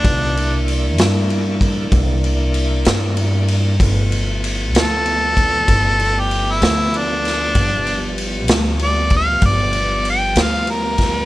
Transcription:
<<
  \new Staff \with { instrumentName = "Harmonica" } { \time 12/8 \key g \mixolydian \tempo 4. = 64 d'4 r1 r4 | r4. a'2~ a'16 g'8 e'8. d'4~ | d'4 r4 d''8 f''8 d''4 g''8 f''8 bes'4 | }
  \new Staff \with { instrumentName = "Tonewheel organ" } { \time 12/8 \key g \mixolydian <ees b f'>8 <bes d' e'>1~ <bes d' e'>4. | <f a b>1. | <f g b>1. | }
  \new Staff \with { instrumentName = "Upright bass" } { \clef bass \time 12/8 \key g \mixolydian c,4. g,4. c,4. g,4. | g,,4. d,4. g,,4. d,4. | g,,4. d,4. g,,4. d,4. | }
  \new DrumStaff \with { instrumentName = "Drums" } \drummode { \time 12/8 <bd cymr>8 cymr8 cymr8 <cymr sn>8 cymr8 <bd cymr>8 <bd cymr>8 cymr8 cymr8 <cymr sn>8 cymr8 cymr8 | <bd cymr>8 cymr8 cymr8 <cymr sn>8 cymr8 <bd cymr>8 <bd cymr>8 cymr8 cymr8 <cymr sn>8 cymr8 <cymr sn>8 | <bd cymr>8 cymr8 cymr8 <cymr sn>8 cymr8 <bd cymr>8 <bd cymr>8 cymr8 cymr8 <cymr sn>8 cymr8 <bd cymr sn>8 | }
>>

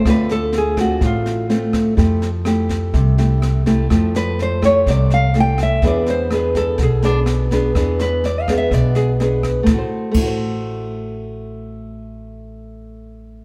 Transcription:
<<
  \new Staff \with { instrumentName = "Nylon-string guitar" } { \time 4/4 \key a \minor \tempo 4 = 125 b'8 a'8 gis'8 fis'8 f'4 r4 | r1 | r8 b'8 c''8 cis''8 d''8 f''8 g''8 e''8 | d''8 c''8 b'8 a'8 gis'8 d'8 r4 |
r8 b'8 \tuplet 3/2 { d''8 f''8 e''8 } d''8 gis'8 r4 | r1 | r1 | }
  \new Staff \with { instrumentName = "Nylon-string guitar" } { \time 4/4 \key a \minor << { <a c' f'>4. <a c' f'>4. <a c' f'>4 | <a e' g'>8 r8 <a e' g'>4. <a e' g'>4 <a e' g'>8 | <a e' g'>4. <a e' g'>4. <a e' g'>4 | <b d' gis'>4 <b d' gis'>4 r8 <b d' gis'>4 <b d' gis'>8 |
<b d' gis'>4 r8 <b d' gis'>4. <b d' gis'>4 | <a e' fis' c''>8 r8 <a e' fis' c''>2.~ | <a e' fis' c''>1 | } \\ { d2 a,2 | f2 c2 | f2 c2 | e2 b,2 |
e2 b,2 | r1 | r1 | } >> }
  \new Staff \with { instrumentName = "Upright bass" } { \clef bass \time 4/4 \key a \minor d,2 a,,2 | f,2 c,2 | f,2 c,2 | e,2 b,,2 |
e,2 b,,2 | a,,8 r8 a,,2.~ | a,,1 | }
  \new DrumStaff \with { instrumentName = "Drums" } \drummode { \time 4/4 <bd ss sn>8 sn8 sn8 <bd ss sn>8 <bd sn>8 sn8 sn8 <bd ss sn>8 | <bd sn>8 sn8 <ss sn>8 <bd sn>8 <bd sn>8 sn8 <ss sn>8 <bd sn>8 | <bd ss sn>8 sn8 sn8 <bd ss sn>8 <bd sn>8 sn8 sn8 <bd ss sn>8 | <bd sn>8 sn8 <ss sn>8 <bd sn>8 <bd sn>8 sn8 <ss sn>8 <bd sn>8 |
<bd ss sn>8 sn8 sn8 <bd ss sn>8 <bd sn>8 sn8 sn8 <bd ss sn>8 | <bd sn>4 <cymc bd>4 r4 r4 | r4 r4 r4 r4 | }
>>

